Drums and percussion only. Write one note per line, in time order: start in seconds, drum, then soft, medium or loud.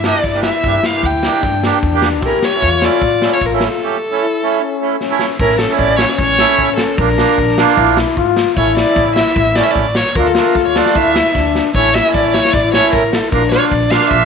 0.04 snare medium
0.24 kick medium
0.33 snare soft
0.43 snare medium
0.64 kick medium
0.64 snare soft
0.83 snare medium
1.03 kick medium
1.23 snare medium
1.43 kick medium
1.43 snare soft
1.63 snare medium
1.83 kick medium
2.02 snare loud
2.22 kick medium
2.22 snare soft
2.42 snare medium
2.62 kick medium
2.82 snare medium
3.02 kick medium
3.22 snare medium
3.41 kick medium
3.60 snare medium
5.01 snare soft
5.19 snare medium
5.40 kick medium
5.50 snare soft
5.58 snare medium
5.69 snare soft
5.79 kick medium
5.99 snare loud
6.09 snare medium
6.19 kick medium
6.39 snare medium
6.58 kick medium
6.78 snare loud
6.98 kick loud
7.09 snare soft
7.18 snare medium
7.28 snare soft
7.38 kick medium
7.38 snare soft
7.48 snare soft
7.58 snare loud
7.67 snare medium
7.77 kick medium
7.87 snare soft
7.97 snare loud
8.07 snare soft
8.17 kick medium
8.37 snare medium
8.57 kick medium
8.77 snare medium
8.96 kick medium
8.96 snare soft
9.16 snare medium
9.27 snare medium
9.36 kick medium
9.55 snare medium
9.65 snare soft
9.76 kick medium
9.95 snare loud
10.06 snare soft
10.15 kick medium
10.35 snare medium
10.55 kick medium
10.76 snare medium
10.86 snare medium
10.95 kick medium
11.16 snare medium
11.35 kick medium
11.35 snare soft
11.55 snare medium
11.75 kick medium
11.85 snare soft
11.95 snare medium
12.05 snare soft
12.14 kick medium
12.25 snare soft
12.34 snare medium
12.45 snare medium
12.54 kick medium
12.74 snare medium
12.93 kick medium
12.93 snare soft
13.13 snare loud
13.32 kick medium
13.43 snare soft
13.52 snare medium
13.62 snare soft
13.71 kick medium
13.91 snare loud
14.00 snare medium
14.11 kick medium